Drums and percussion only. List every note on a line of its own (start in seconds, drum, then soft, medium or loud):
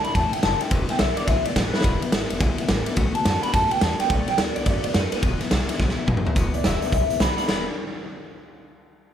0.04 ride medium
0.15 kick loud
0.15 snare soft
0.15 ride medium
0.33 ride medium
0.43 snare loud
0.43 ride medium
0.61 ride medium
0.71 kick loud
0.71 ride loud
0.89 snare soft
0.89 ride medium
0.99 snare loud
0.99 ride medium
1.17 ride medium
1.28 kick loud
1.28 snare soft
1.28 ride medium
1.45 ride medium
1.56 kick medium
1.56 snare loud
1.56 ride medium
1.74 snare medium
1.81 kick loud
1.81 snare medium
1.81 ride medium
2.02 ride medium
2.12 snare loud
2.12 ride medium
2.30 ride medium
2.40 kick loud
2.40 snare soft
2.40 ride medium
2.58 ride medium
2.69 snare loud
2.69 ride medium
2.86 ride medium
2.96 kick loud
2.96 ride medium
3.15 ride medium
3.25 snare loud
3.25 ride loud
3.43 ride medium
3.54 kick loud
3.54 snare soft
3.54 ride loud
3.71 ride medium
3.81 snare loud
3.81 ride medium
4.00 snare soft
4.00 ride medium
4.10 kick loud
4.10 ride medium
4.28 snare soft
4.28 ride medium
4.38 snare loud
4.38 ride medium
4.56 ride medium
4.66 kick loud
4.66 snare soft
4.66 ride medium
4.84 ride medium
4.94 snare loud
4.94 ride medium
5.12 snare soft
5.12 ride medium
5.23 kick loud
5.23 ride medium
5.41 snare soft
5.41 ride medium
5.51 snare loud
5.51 ride medium
5.69 ride medium
5.79 kick loud
5.79 snare medium
5.89 snare medium
6.08 kick medium
6.08 mid tom medium
6.17 mid tom medium
6.27 floor tom loud
6.36 kick loud
6.36 closed hi-hat medium
6.54 closed hi-hat medium
6.64 snare loud
6.64 closed hi-hat medium
6.82 closed hi-hat medium
6.92 kick loud
6.92 closed hi-hat medium
7.10 closed hi-hat medium
7.20 snare loud
7.20 closed hi-hat medium
7.38 snare soft
7.38 closed hi-hat medium
7.49 snare loud
7.49 crash medium